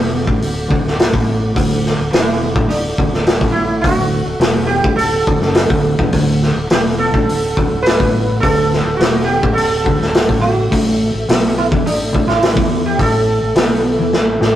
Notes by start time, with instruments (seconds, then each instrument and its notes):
Already playing: fingered electric bass E1, clean electric guitar E2, sitar F#4, tonewheel organ A4 F#5 D6
0.14 high conga, low conga
0.27 fingered electric bass A1, clean electric guitar A2, kick
0.41 fingered electric bass D1, clean electric guitar D2, open hi-hat
0.69 fingered electric bass D1, clean electric guitar D2, kick
0.84 fingered electric bass D1, clean electric guitar D2, snare, high conga, low conga
0.99 snare, open hi-hat
1.12 fingered electric bass A1, clean electric guitar A2, kick
1.28 low conga
1.55 fingered electric bass D1, clean electric guitar D2, kick, open hi-hat
1.85 snare, high conga
1.99 fingered electric bass D1, clean electric guitar D2
2.12 fingered electric bass E1, clean electric guitar E2, sitar E4, snare, open hi-hat
2.42 high conga, low conga
2.55 fingered electric bass A1, clean electric guitar A2, kick
2.69 fingered electric bass D1, clean electric guitar D2, sitar D4, open hi-hat
2.98 fingered electric bass D1, clean electric guitar D2, kick
3.12 fingered electric bass D1, clean electric guitar D2, snare, high conga, low conga
3.26 snare, open hi-hat
3.41 fingered electric bass A1, clean electric guitar A2, kick
3.52 sitar E4, low conga
3.81 fingered electric bass D1, clean electric guitar D2, sitar F#4, kick, open hi-hat
3.87 tonewheel organ E6
4.12 high conga
4.26 fingered electric bass D1, clean electric guitar D2
4.39 fingered electric bass E1, clean electric guitar E2, snare, open hi-hat
4.67 sitar G4, high conga, low conga
4.83 fingered electric bass A1, clean electric guitar A2, kick, high conga
4.96 fingered electric bass D1, clean electric guitar D2, sitar A4, open hi-hat
5.27 fingered electric bass D1, clean electric guitar D2, kick
5.40 fingered electric bass F#1, clean electric guitar F#2, snare, high conga, low conga
5.55 snare, open hi-hat
5.70 fingered electric bass D1, clean electric guitar D2, kick, high conga
5.84 low conga
5.99 fingered electric bass E1, clean electric guitar E2, kick, low conga
6.13 fingered electric bass D1, clean electric guitar D2, kick, open hi-hat
6.42 snare, high conga
6.56 fingered electric bass D1, clean electric guitar D2
6.70 fingered electric bass E1, clean electric guitar E2, sitar G4, snare, open hi-hat
6.98 sitar A4, high conga, low conga
7.13 fingered electric bass A1, clean electric guitar A2, kick
7.29 fingered electric bass D1, clean electric guitar D2, open hi-hat
7.57 fingered electric bass D1, clean electric guitar D2, kick
7.72 fingered electric bass D1, clean electric guitar D2, high conga, low conga
7.83 sitar B4, open hi-hat
7.87 snare
8.00 fingered electric bass A1, clean electric guitar A2, kick
8.15 low conga
8.40 fingered electric bass D1, clean electric guitar D2, sitar A4, kick, open hi-hat
8.72 snare, high conga
8.85 fingered electric bass D1
8.96 fingered electric bass E1, clean electric guitar E2, sitar F#4, open hi-hat
9.01 snare
9.24 sitar G4
9.29 high conga, low conga
9.42 fingered electric bass A1, clean electric guitar A2, kick
9.53 fingered electric bass D1, clean electric guitar D2, sitar A4
9.57 open hi-hat
9.85 fingered electric bass D1, clean electric guitar D2, kick
10.00 fingered electric bass D1, clean electric guitar D2, snare, high conga, low conga
10.14 snare, open hi-hat
10.28 fingered electric bass A1, clean electric guitar A2, kick
10.41 sitar F#4, low conga
10.71 fingered electric bass A1, clean electric guitar A2, tonewheel organ A4 E5, kick, open hi-hat
11.02 high conga
11.14 fingered electric bass A1, clean electric guitar A2
11.29 fingered electric bass B1, clean electric guitar B2, snare, open hi-hat
11.58 sitar E4, high conga, low conga
11.71 fingered electric bass E2, clean electric guitar E3, kick
11.85 fingered electric bass A1, clean electric guitar A2, sitar D4, open hi-hat
12.13 fingered electric bass A1, clean electric guitar A2, kick
12.27 fingered electric bass A1, clean electric guitar A2, sitar E4, snare, high conga, low conga
12.42 snare, open hi-hat
12.55 fingered electric bass E2, clean electric guitar E3, kick
12.71 low conga
12.86 sitar G4
12.97 fingered electric bass A1, clean electric guitar A2, sitar A4, kick, open hi-hat
13.43 fingered electric bass A1
13.55 fingered electric bass B1, clean electric guitar B2, snare, open hi-hat
13.85 high conga, low conga
13.99 fingered electric bass E2, clean electric guitar E3, high conga
14.13 fingered electric bass A1, clean electric guitar A2, snare
14.41 fingered electric bass A1, clean electric guitar A2, snare